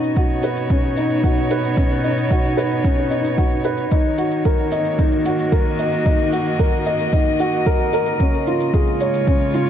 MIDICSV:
0, 0, Header, 1, 4, 480
1, 0, Start_track
1, 0, Key_signature, -6, "minor"
1, 0, Tempo, 535714
1, 1590, Time_signature, 4, 2, 24, 8
1, 8689, End_track
2, 0, Start_track
2, 0, Title_t, "Upright piano"
2, 0, Program_c, 0, 0
2, 0, Control_c, 0, 64, 127
2, 0, Note_on_c, 0, 61, 69
2, 0, Note_on_c, 0, 63, 66
2, 137, Note_off_c, 0, 63, 0
2, 148, Note_on_c, 0, 66, 64
2, 286, Note_off_c, 0, 66, 0
2, 389, Note_on_c, 0, 71, 60
2, 617, Note_off_c, 0, 71, 0
2, 630, Note_off_c, 0, 61, 0
2, 630, Note_on_c, 0, 61, 69
2, 858, Note_off_c, 0, 61, 0
2, 871, Note_on_c, 0, 63, 66
2, 1098, Note_off_c, 0, 63, 0
2, 1111, Note_on_c, 0, 66, 67
2, 1247, Note_off_c, 0, 66, 0
2, 1352, Note_on_c, 0, 71, 67
2, 1579, Note_off_c, 0, 71, 0
2, 1586, Note_on_c, 0, 61, 70
2, 1816, Note_off_c, 0, 61, 0
2, 1828, Note_on_c, 0, 63, 65
2, 2057, Note_off_c, 0, 63, 0
2, 2068, Note_on_c, 0, 66, 69
2, 2206, Note_off_c, 0, 66, 0
2, 2304, Note_on_c, 0, 71, 66
2, 2535, Note_off_c, 0, 71, 0
2, 2545, Note_on_c, 0, 61, 73
2, 2775, Note_off_c, 0, 61, 0
2, 2785, Note_on_c, 0, 63, 61
2, 3015, Note_off_c, 0, 63, 0
2, 3023, Note_on_c, 0, 66, 70
2, 3163, Note_off_c, 0, 66, 0
2, 3267, Note_on_c, 0, 71, 70
2, 3496, Note_off_c, 0, 71, 0
2, 3506, Note_on_c, 0, 63, 75
2, 3523, Control_c, 0, 64, 0
2, 3662, Control_c, 0, 64, 127
2, 3736, Note_off_c, 0, 63, 0
2, 3745, Note_on_c, 0, 66, 68
2, 3975, Note_off_c, 0, 66, 0
2, 3988, Note_on_c, 0, 70, 68
2, 4126, Note_off_c, 0, 70, 0
2, 4229, Note_on_c, 0, 75, 67
2, 4457, Note_off_c, 0, 75, 0
2, 4470, Note_on_c, 0, 63, 75
2, 4698, Note_off_c, 0, 63, 0
2, 4707, Note_on_c, 0, 66, 69
2, 4936, Note_off_c, 0, 66, 0
2, 4946, Note_on_c, 0, 70, 71
2, 5084, Note_off_c, 0, 70, 0
2, 5189, Note_on_c, 0, 75, 66
2, 5417, Note_off_c, 0, 75, 0
2, 5427, Note_on_c, 0, 63, 74
2, 5656, Note_off_c, 0, 63, 0
2, 5665, Note_on_c, 0, 66, 68
2, 5895, Note_off_c, 0, 66, 0
2, 5906, Note_on_c, 0, 70, 71
2, 6045, Note_off_c, 0, 70, 0
2, 6149, Note_on_c, 0, 75, 69
2, 6377, Note_off_c, 0, 75, 0
2, 6387, Note_on_c, 0, 63, 67
2, 6616, Note_off_c, 0, 63, 0
2, 6629, Note_on_c, 0, 66, 89
2, 6766, Note_off_c, 0, 66, 0
2, 6867, Note_on_c, 0, 70, 93
2, 7096, Note_off_c, 0, 70, 0
2, 7109, Note_on_c, 0, 70, 93
2, 7337, Note_off_c, 0, 70, 0
2, 7350, Note_on_c, 0, 61, 77
2, 7362, Control_c, 0, 64, 0
2, 7493, Control_c, 0, 64, 127
2, 7578, Note_off_c, 0, 61, 0
2, 7592, Note_on_c, 0, 65, 70
2, 7819, Note_off_c, 0, 65, 0
2, 7830, Note_on_c, 0, 68, 70
2, 7966, Note_off_c, 0, 68, 0
2, 8068, Note_on_c, 0, 73, 73
2, 8297, Note_off_c, 0, 73, 0
2, 8309, Note_on_c, 0, 61, 75
2, 8537, Note_off_c, 0, 61, 0
2, 8552, Note_on_c, 0, 65, 69
2, 8689, Note_off_c, 0, 65, 0
2, 8689, End_track
3, 0, Start_track
3, 0, Title_t, "String quartet"
3, 0, Program_c, 1, 48
3, 0, Note_on_c, 1, 47, 69
3, 0, Note_on_c, 1, 59, 72
3, 0, Note_on_c, 1, 66, 65
3, 0, Note_on_c, 1, 75, 67
3, 93, Note_on_c, 1, 63, 75
3, 115, Note_on_c, 1, 73, 74
3, 409, Note_off_c, 1, 75, 0
3, 1130, Note_off_c, 1, 66, 0
3, 3509, Note_off_c, 1, 59, 0
3, 3511, Note_off_c, 1, 47, 0
3, 3517, Note_on_c, 1, 51, 69
3, 4044, Note_on_c, 1, 58, 75
3, 4204, Note_on_c, 1, 66, 64
3, 4645, Note_off_c, 1, 63, 0
3, 4977, Note_on_c, 1, 75, 61
3, 5031, Note_off_c, 1, 73, 0
3, 7348, Note_on_c, 1, 49, 70
3, 7350, Note_off_c, 1, 66, 0
3, 7353, Note_off_c, 1, 51, 0
3, 7816, Note_on_c, 1, 65, 62
3, 7857, Note_on_c, 1, 56, 70
3, 8076, Note_on_c, 1, 73, 77
3, 8591, Note_off_c, 1, 75, 0
3, 8689, Note_off_c, 1, 49, 0
3, 8689, Note_off_c, 1, 56, 0
3, 8689, Note_off_c, 1, 58, 0
3, 8689, Note_off_c, 1, 65, 0
3, 8689, Note_off_c, 1, 73, 0
3, 8689, End_track
4, 0, Start_track
4, 0, Title_t, "Drums"
4, 29, Note_on_c, 9, 82, 27
4, 118, Note_off_c, 9, 82, 0
4, 148, Note_on_c, 9, 36, 95
4, 148, Note_on_c, 9, 82, 40
4, 238, Note_off_c, 9, 36, 0
4, 238, Note_off_c, 9, 82, 0
4, 267, Note_on_c, 9, 82, 18
4, 357, Note_off_c, 9, 82, 0
4, 385, Note_on_c, 9, 82, 62
4, 474, Note_off_c, 9, 82, 0
4, 504, Note_on_c, 9, 82, 27
4, 594, Note_off_c, 9, 82, 0
4, 627, Note_on_c, 9, 82, 35
4, 628, Note_on_c, 9, 36, 89
4, 716, Note_off_c, 9, 82, 0
4, 718, Note_off_c, 9, 36, 0
4, 747, Note_on_c, 9, 82, 18
4, 837, Note_off_c, 9, 82, 0
4, 866, Note_on_c, 9, 82, 64
4, 956, Note_off_c, 9, 82, 0
4, 985, Note_on_c, 9, 82, 27
4, 1074, Note_off_c, 9, 82, 0
4, 1108, Note_on_c, 9, 82, 34
4, 1109, Note_on_c, 9, 36, 94
4, 1198, Note_off_c, 9, 36, 0
4, 1198, Note_off_c, 9, 82, 0
4, 1229, Note_on_c, 9, 82, 19
4, 1319, Note_off_c, 9, 82, 0
4, 1347, Note_on_c, 9, 82, 63
4, 1436, Note_off_c, 9, 82, 0
4, 1468, Note_on_c, 9, 82, 26
4, 1558, Note_off_c, 9, 82, 0
4, 1587, Note_on_c, 9, 82, 39
4, 1589, Note_on_c, 9, 36, 97
4, 1677, Note_off_c, 9, 82, 0
4, 1678, Note_off_c, 9, 36, 0
4, 1710, Note_on_c, 9, 82, 19
4, 1800, Note_off_c, 9, 82, 0
4, 1826, Note_on_c, 9, 82, 68
4, 1916, Note_off_c, 9, 82, 0
4, 1948, Note_on_c, 9, 82, 30
4, 2038, Note_off_c, 9, 82, 0
4, 2069, Note_on_c, 9, 36, 92
4, 2071, Note_on_c, 9, 82, 42
4, 2158, Note_off_c, 9, 36, 0
4, 2160, Note_off_c, 9, 82, 0
4, 2188, Note_on_c, 9, 82, 19
4, 2278, Note_off_c, 9, 82, 0
4, 2310, Note_on_c, 9, 82, 67
4, 2400, Note_off_c, 9, 82, 0
4, 2430, Note_on_c, 9, 82, 28
4, 2520, Note_off_c, 9, 82, 0
4, 2549, Note_on_c, 9, 36, 91
4, 2549, Note_on_c, 9, 82, 40
4, 2639, Note_off_c, 9, 36, 0
4, 2639, Note_off_c, 9, 82, 0
4, 2668, Note_on_c, 9, 82, 19
4, 2757, Note_off_c, 9, 82, 0
4, 2785, Note_on_c, 9, 82, 69
4, 2875, Note_off_c, 9, 82, 0
4, 2908, Note_on_c, 9, 82, 29
4, 2997, Note_off_c, 9, 82, 0
4, 3027, Note_on_c, 9, 82, 37
4, 3029, Note_on_c, 9, 36, 97
4, 3116, Note_off_c, 9, 82, 0
4, 3119, Note_off_c, 9, 36, 0
4, 3144, Note_on_c, 9, 82, 19
4, 3233, Note_off_c, 9, 82, 0
4, 3262, Note_on_c, 9, 82, 66
4, 3352, Note_off_c, 9, 82, 0
4, 3383, Note_on_c, 9, 82, 27
4, 3472, Note_off_c, 9, 82, 0
4, 3504, Note_on_c, 9, 82, 37
4, 3510, Note_on_c, 9, 36, 100
4, 3594, Note_off_c, 9, 82, 0
4, 3600, Note_off_c, 9, 36, 0
4, 3627, Note_on_c, 9, 82, 20
4, 3717, Note_off_c, 9, 82, 0
4, 3745, Note_on_c, 9, 82, 73
4, 3834, Note_off_c, 9, 82, 0
4, 3866, Note_on_c, 9, 82, 30
4, 3955, Note_off_c, 9, 82, 0
4, 3985, Note_on_c, 9, 82, 43
4, 3990, Note_on_c, 9, 36, 91
4, 4075, Note_off_c, 9, 82, 0
4, 4079, Note_off_c, 9, 36, 0
4, 4104, Note_on_c, 9, 82, 20
4, 4193, Note_off_c, 9, 82, 0
4, 4225, Note_on_c, 9, 82, 73
4, 4315, Note_off_c, 9, 82, 0
4, 4346, Note_on_c, 9, 82, 30
4, 4435, Note_off_c, 9, 82, 0
4, 4467, Note_on_c, 9, 82, 39
4, 4469, Note_on_c, 9, 36, 90
4, 4557, Note_off_c, 9, 82, 0
4, 4559, Note_off_c, 9, 36, 0
4, 4588, Note_on_c, 9, 82, 22
4, 4678, Note_off_c, 9, 82, 0
4, 4707, Note_on_c, 9, 82, 74
4, 4796, Note_off_c, 9, 82, 0
4, 4831, Note_on_c, 9, 82, 31
4, 4920, Note_off_c, 9, 82, 0
4, 4948, Note_on_c, 9, 36, 102
4, 4948, Note_on_c, 9, 82, 40
4, 5037, Note_off_c, 9, 82, 0
4, 5038, Note_off_c, 9, 36, 0
4, 5068, Note_on_c, 9, 82, 19
4, 5158, Note_off_c, 9, 82, 0
4, 5187, Note_on_c, 9, 82, 69
4, 5277, Note_off_c, 9, 82, 0
4, 5307, Note_on_c, 9, 82, 29
4, 5396, Note_off_c, 9, 82, 0
4, 5425, Note_on_c, 9, 82, 38
4, 5429, Note_on_c, 9, 36, 102
4, 5515, Note_off_c, 9, 82, 0
4, 5518, Note_off_c, 9, 36, 0
4, 5548, Note_on_c, 9, 82, 21
4, 5638, Note_off_c, 9, 82, 0
4, 5667, Note_on_c, 9, 82, 71
4, 5757, Note_off_c, 9, 82, 0
4, 5787, Note_on_c, 9, 82, 31
4, 5877, Note_off_c, 9, 82, 0
4, 5907, Note_on_c, 9, 82, 42
4, 5908, Note_on_c, 9, 36, 102
4, 5996, Note_off_c, 9, 82, 0
4, 5998, Note_off_c, 9, 36, 0
4, 6027, Note_on_c, 9, 82, 20
4, 6116, Note_off_c, 9, 82, 0
4, 6146, Note_on_c, 9, 82, 70
4, 6235, Note_off_c, 9, 82, 0
4, 6265, Note_on_c, 9, 82, 29
4, 6355, Note_off_c, 9, 82, 0
4, 6387, Note_on_c, 9, 82, 41
4, 6388, Note_on_c, 9, 36, 100
4, 6476, Note_off_c, 9, 82, 0
4, 6477, Note_off_c, 9, 36, 0
4, 6506, Note_on_c, 9, 82, 21
4, 6595, Note_off_c, 9, 82, 0
4, 6624, Note_on_c, 9, 82, 72
4, 6713, Note_off_c, 9, 82, 0
4, 6745, Note_on_c, 9, 82, 29
4, 6835, Note_off_c, 9, 82, 0
4, 6864, Note_on_c, 9, 82, 41
4, 6867, Note_on_c, 9, 36, 103
4, 6954, Note_off_c, 9, 82, 0
4, 6957, Note_off_c, 9, 36, 0
4, 6984, Note_on_c, 9, 82, 21
4, 7074, Note_off_c, 9, 82, 0
4, 7106, Note_on_c, 9, 82, 72
4, 7196, Note_off_c, 9, 82, 0
4, 7224, Note_on_c, 9, 82, 31
4, 7314, Note_off_c, 9, 82, 0
4, 7345, Note_on_c, 9, 82, 39
4, 7347, Note_on_c, 9, 36, 95
4, 7434, Note_off_c, 9, 82, 0
4, 7437, Note_off_c, 9, 36, 0
4, 7467, Note_on_c, 9, 82, 19
4, 7557, Note_off_c, 9, 82, 0
4, 7588, Note_on_c, 9, 82, 72
4, 7678, Note_off_c, 9, 82, 0
4, 7707, Note_on_c, 9, 82, 31
4, 7797, Note_off_c, 9, 82, 0
4, 7828, Note_on_c, 9, 36, 97
4, 7829, Note_on_c, 9, 82, 43
4, 7918, Note_off_c, 9, 36, 0
4, 7919, Note_off_c, 9, 82, 0
4, 7948, Note_on_c, 9, 82, 19
4, 8037, Note_off_c, 9, 82, 0
4, 8067, Note_on_c, 9, 82, 70
4, 8156, Note_off_c, 9, 82, 0
4, 8187, Note_on_c, 9, 82, 30
4, 8277, Note_off_c, 9, 82, 0
4, 8309, Note_on_c, 9, 36, 86
4, 8310, Note_on_c, 9, 82, 40
4, 8399, Note_off_c, 9, 36, 0
4, 8400, Note_off_c, 9, 82, 0
4, 8429, Note_on_c, 9, 82, 20
4, 8519, Note_off_c, 9, 82, 0
4, 8545, Note_on_c, 9, 82, 71
4, 8635, Note_off_c, 9, 82, 0
4, 8689, End_track
0, 0, End_of_file